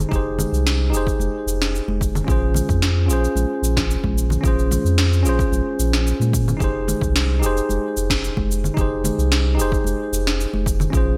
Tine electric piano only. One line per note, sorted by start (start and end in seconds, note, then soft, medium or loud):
0.00 0.09 D#4 medium
0.00 0.11 G4 medium
0.00 0.13 G#4 medium
0.00 0.11 C5 medium
0.09 0.89 D#4 medium
0.09 0.90 G4 medium
0.13 0.91 G#4 medium
0.13 0.92 C5 medium
0.90 2.24 D#4 medium
0.90 2.25 G4 medium
0.94 2.26 G#4 medium
0.94 2.27 C5 medium
2.24 3.04 C#4 medium
2.24 3.06 F4 medium
2.29 3.07 G#4 medium
2.29 3.08 C5 medium
3.06 4.40 C#4 medium
3.06 4.41 F4 medium
3.11 4.42 G#4 medium
3.11 4.43 C5 medium
4.41 5.21 C#4 medium
4.41 5.22 F4 medium
4.46 5.23 G#4 medium
4.46 5.24 C5 medium
5.23 6.56 C#4 medium
5.23 6.57 F4 medium
5.27 6.58 G#4 medium
5.27 6.60 C5 medium
6.57 7.37 D#4 medium
6.57 7.38 G4 medium
6.62 7.39 G#4 medium
6.62 7.40 C5 loud
7.39 8.73 D#4 medium
7.39 8.74 G4 medium
7.44 8.75 G#4 medium
7.44 8.76 C5 medium
8.74 9.54 D#4 medium
8.74 9.55 G4 medium
8.79 9.56 G#4 medium
8.79 9.57 C5 medium
9.55 10.89 D#4 medium
9.55 10.90 G4 medium
9.60 10.91 G#4 medium
9.60 10.92 C5 loud
10.90 11.17 C#4 medium
10.90 11.17 F4 medium
10.95 11.17 G#4 medium
10.95 11.17 C5 medium